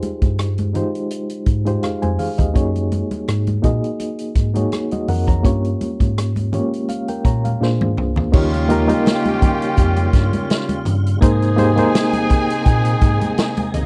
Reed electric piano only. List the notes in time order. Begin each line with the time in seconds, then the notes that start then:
Already playing: D#4 F4 G4 G#4 C5
0.73 G#3 D#4 F4 G4 C5
1.65 G#3 D#4 F4 G4 C5
1.83 G#4 F5
2.02 C5 G#5
2.19 G#4 F5
2.38 G4 D#5
2.53 A#3 D#4 F#4 G#4 C#5
3.62 A#3 D#4 F#4 G#4 D#5
4.54 A#3 D#4 F#4 G#4 C#5
4.92 F#4 D#5
5.09 A#4 F#5
5.28 C#5 A#5
5.43 A#3 C#4 F4 G4 C#5
6.52 G#3 C#4 F4 G4 C#5
6.59 A#3
6.89 F5
7.09 A#4 G5
7.25 C#5 A#5
7.45 F5
7.61 A#3 D4 F4 G#4 C5
8.32 A#3 D#4 F4 G4 C#5
8.69 A#3 D#4 F4 G4 A#4
8.87 A#3 D#4 F4 G4 D#5
11.21 A#3 D#4 G#4 A#4 C5
11.56 A#3 D#4 G4 G#4 C5
11.76 A#3 D#4 G#4 A#4 C5